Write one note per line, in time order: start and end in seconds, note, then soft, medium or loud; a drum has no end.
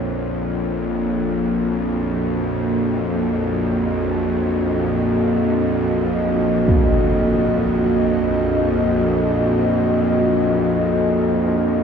0.00 11.83 A#1 medium
0.00 11.83 F2 medium
0.00 1.05 A#3 medium
0.00 1.06 F4 medium
0.00 4.06 C#5 medium
1.06 11.83 A#3 medium
1.32 11.83 F#4 medium
2.64 11.83 D#5 medium
6.68 impact medium